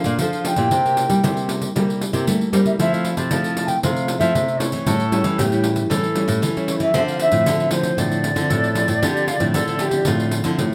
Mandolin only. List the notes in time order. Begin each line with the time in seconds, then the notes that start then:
2.80 E4
4.87 A4
5.38 G4
5.90 A4
6.94 C5
8.50 A4
9.02 G4
9.28 F4
9.55 A4
9.81 G4
10.07 F4